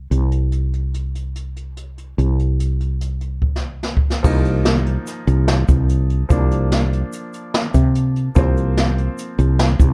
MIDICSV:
0, 0, Header, 1, 4, 480
1, 0, Start_track
1, 0, Key_signature, -3, "minor"
1, 0, Tempo, 412371
1, 133, Time_signature, 5, 2, 24, 8
1, 11564, End_track
2, 0, Start_track
2, 0, Title_t, "Grand piano"
2, 0, Program_c, 0, 0
2, 4922, Note_on_c, 0, 53, 65
2, 4940, Note_on_c, 0, 58, 58
2, 4962, Note_on_c, 0, 63, 74
2, 7284, Note_off_c, 0, 53, 0
2, 7292, Note_off_c, 0, 58, 0
2, 7303, Note_off_c, 0, 63, 0
2, 7320, Note_on_c, 0, 53, 63
2, 7338, Note_on_c, 0, 58, 63
2, 7354, Note_on_c, 0, 62, 71
2, 9678, Note_off_c, 0, 53, 0
2, 9687, Note_off_c, 0, 58, 0
2, 9695, Note_off_c, 0, 62, 0
2, 9723, Note_on_c, 0, 53, 65
2, 9740, Note_on_c, 0, 58, 61
2, 9760, Note_on_c, 0, 60, 72
2, 11564, Note_off_c, 0, 53, 0
2, 11564, Note_off_c, 0, 58, 0
2, 11564, Note_off_c, 0, 60, 0
2, 11564, End_track
3, 0, Start_track
3, 0, Title_t, "Fretless electric bass"
3, 0, Program_c, 1, 35
3, 129, Note_on_c, 1, 36, 61
3, 2493, Note_off_c, 1, 36, 0
3, 2540, Note_on_c, 1, 36, 64
3, 4898, Note_off_c, 1, 36, 0
3, 4939, Note_on_c, 1, 36, 104
3, 5775, Note_off_c, 1, 36, 0
3, 6138, Note_on_c, 1, 36, 83
3, 6557, Note_off_c, 1, 36, 0
3, 6616, Note_on_c, 1, 36, 75
3, 7243, Note_off_c, 1, 36, 0
3, 7336, Note_on_c, 1, 36, 97
3, 8170, Note_off_c, 1, 36, 0
3, 9012, Note_on_c, 1, 48, 74
3, 9638, Note_off_c, 1, 48, 0
3, 9733, Note_on_c, 1, 36, 112
3, 10565, Note_off_c, 1, 36, 0
3, 10925, Note_on_c, 1, 36, 87
3, 11344, Note_off_c, 1, 36, 0
3, 11399, Note_on_c, 1, 36, 79
3, 11564, Note_off_c, 1, 36, 0
3, 11564, End_track
4, 0, Start_track
4, 0, Title_t, "Drums"
4, 130, Note_on_c, 9, 42, 61
4, 246, Note_off_c, 9, 42, 0
4, 368, Note_on_c, 9, 42, 49
4, 484, Note_off_c, 9, 42, 0
4, 603, Note_on_c, 9, 42, 63
4, 720, Note_off_c, 9, 42, 0
4, 854, Note_on_c, 9, 42, 43
4, 971, Note_off_c, 9, 42, 0
4, 1094, Note_on_c, 9, 42, 61
4, 1211, Note_off_c, 9, 42, 0
4, 1340, Note_on_c, 9, 42, 50
4, 1456, Note_off_c, 9, 42, 0
4, 1578, Note_on_c, 9, 42, 55
4, 1694, Note_off_c, 9, 42, 0
4, 1819, Note_on_c, 9, 42, 47
4, 1936, Note_off_c, 9, 42, 0
4, 2057, Note_on_c, 9, 42, 65
4, 2174, Note_off_c, 9, 42, 0
4, 2302, Note_on_c, 9, 42, 41
4, 2418, Note_off_c, 9, 42, 0
4, 2545, Note_on_c, 9, 42, 59
4, 2661, Note_off_c, 9, 42, 0
4, 2784, Note_on_c, 9, 42, 49
4, 2901, Note_off_c, 9, 42, 0
4, 3024, Note_on_c, 9, 42, 62
4, 3140, Note_off_c, 9, 42, 0
4, 3263, Note_on_c, 9, 42, 48
4, 3379, Note_off_c, 9, 42, 0
4, 3503, Note_on_c, 9, 42, 73
4, 3619, Note_off_c, 9, 42, 0
4, 3735, Note_on_c, 9, 42, 51
4, 3851, Note_off_c, 9, 42, 0
4, 3979, Note_on_c, 9, 36, 43
4, 4095, Note_off_c, 9, 36, 0
4, 4142, Note_on_c, 9, 38, 45
4, 4258, Note_off_c, 9, 38, 0
4, 4458, Note_on_c, 9, 38, 58
4, 4574, Note_off_c, 9, 38, 0
4, 4618, Note_on_c, 9, 36, 59
4, 4735, Note_off_c, 9, 36, 0
4, 4775, Note_on_c, 9, 38, 54
4, 4892, Note_off_c, 9, 38, 0
4, 4938, Note_on_c, 9, 49, 91
4, 4940, Note_on_c, 9, 36, 100
4, 4940, Note_on_c, 9, 82, 51
4, 5054, Note_off_c, 9, 49, 0
4, 5056, Note_off_c, 9, 36, 0
4, 5056, Note_off_c, 9, 82, 0
4, 5180, Note_on_c, 9, 42, 57
4, 5185, Note_on_c, 9, 82, 15
4, 5297, Note_off_c, 9, 42, 0
4, 5302, Note_off_c, 9, 82, 0
4, 5416, Note_on_c, 9, 38, 105
4, 5416, Note_on_c, 9, 42, 75
4, 5532, Note_off_c, 9, 38, 0
4, 5532, Note_off_c, 9, 42, 0
4, 5660, Note_on_c, 9, 42, 59
4, 5776, Note_off_c, 9, 42, 0
4, 5900, Note_on_c, 9, 38, 34
4, 5900, Note_on_c, 9, 42, 88
4, 5900, Note_on_c, 9, 82, 53
4, 6016, Note_off_c, 9, 38, 0
4, 6016, Note_off_c, 9, 42, 0
4, 6016, Note_off_c, 9, 82, 0
4, 6139, Note_on_c, 9, 42, 59
4, 6143, Note_on_c, 9, 82, 18
4, 6256, Note_off_c, 9, 42, 0
4, 6259, Note_off_c, 9, 82, 0
4, 6376, Note_on_c, 9, 38, 104
4, 6376, Note_on_c, 9, 42, 78
4, 6492, Note_off_c, 9, 38, 0
4, 6492, Note_off_c, 9, 42, 0
4, 6615, Note_on_c, 9, 82, 47
4, 6619, Note_on_c, 9, 36, 67
4, 6620, Note_on_c, 9, 42, 58
4, 6731, Note_off_c, 9, 82, 0
4, 6735, Note_off_c, 9, 36, 0
4, 6736, Note_off_c, 9, 42, 0
4, 6857, Note_on_c, 9, 42, 83
4, 6974, Note_off_c, 9, 42, 0
4, 7097, Note_on_c, 9, 42, 57
4, 7214, Note_off_c, 9, 42, 0
4, 7337, Note_on_c, 9, 36, 100
4, 7337, Note_on_c, 9, 82, 64
4, 7341, Note_on_c, 9, 42, 83
4, 7453, Note_off_c, 9, 82, 0
4, 7454, Note_off_c, 9, 36, 0
4, 7457, Note_off_c, 9, 42, 0
4, 7580, Note_on_c, 9, 42, 67
4, 7580, Note_on_c, 9, 82, 17
4, 7696, Note_off_c, 9, 82, 0
4, 7697, Note_off_c, 9, 42, 0
4, 7818, Note_on_c, 9, 38, 91
4, 7818, Note_on_c, 9, 42, 85
4, 7935, Note_off_c, 9, 38, 0
4, 7935, Note_off_c, 9, 42, 0
4, 8065, Note_on_c, 9, 42, 52
4, 8181, Note_off_c, 9, 42, 0
4, 8295, Note_on_c, 9, 82, 59
4, 8301, Note_on_c, 9, 42, 84
4, 8412, Note_off_c, 9, 82, 0
4, 8417, Note_off_c, 9, 42, 0
4, 8536, Note_on_c, 9, 82, 19
4, 8541, Note_on_c, 9, 42, 60
4, 8652, Note_off_c, 9, 82, 0
4, 8658, Note_off_c, 9, 42, 0
4, 8779, Note_on_c, 9, 38, 102
4, 8779, Note_on_c, 9, 42, 70
4, 8895, Note_off_c, 9, 38, 0
4, 8895, Note_off_c, 9, 42, 0
4, 9012, Note_on_c, 9, 82, 44
4, 9016, Note_on_c, 9, 36, 69
4, 9020, Note_on_c, 9, 42, 56
4, 9129, Note_off_c, 9, 82, 0
4, 9132, Note_off_c, 9, 36, 0
4, 9137, Note_off_c, 9, 42, 0
4, 9254, Note_on_c, 9, 42, 83
4, 9370, Note_off_c, 9, 42, 0
4, 9496, Note_on_c, 9, 42, 52
4, 9612, Note_off_c, 9, 42, 0
4, 9726, Note_on_c, 9, 82, 53
4, 9735, Note_on_c, 9, 36, 104
4, 9739, Note_on_c, 9, 42, 69
4, 9842, Note_off_c, 9, 82, 0
4, 9852, Note_off_c, 9, 36, 0
4, 9856, Note_off_c, 9, 42, 0
4, 9973, Note_on_c, 9, 82, 18
4, 9977, Note_on_c, 9, 42, 58
4, 10089, Note_off_c, 9, 82, 0
4, 10094, Note_off_c, 9, 42, 0
4, 10213, Note_on_c, 9, 38, 98
4, 10213, Note_on_c, 9, 42, 78
4, 10330, Note_off_c, 9, 38, 0
4, 10330, Note_off_c, 9, 42, 0
4, 10454, Note_on_c, 9, 42, 53
4, 10570, Note_off_c, 9, 42, 0
4, 10688, Note_on_c, 9, 82, 59
4, 10693, Note_on_c, 9, 42, 84
4, 10805, Note_off_c, 9, 82, 0
4, 10809, Note_off_c, 9, 42, 0
4, 10930, Note_on_c, 9, 42, 60
4, 10931, Note_on_c, 9, 82, 21
4, 11047, Note_off_c, 9, 42, 0
4, 11048, Note_off_c, 9, 82, 0
4, 11165, Note_on_c, 9, 38, 108
4, 11165, Note_on_c, 9, 42, 79
4, 11282, Note_off_c, 9, 38, 0
4, 11282, Note_off_c, 9, 42, 0
4, 11402, Note_on_c, 9, 42, 61
4, 11404, Note_on_c, 9, 36, 75
4, 11407, Note_on_c, 9, 82, 47
4, 11518, Note_off_c, 9, 42, 0
4, 11520, Note_off_c, 9, 36, 0
4, 11524, Note_off_c, 9, 82, 0
4, 11564, End_track
0, 0, End_of_file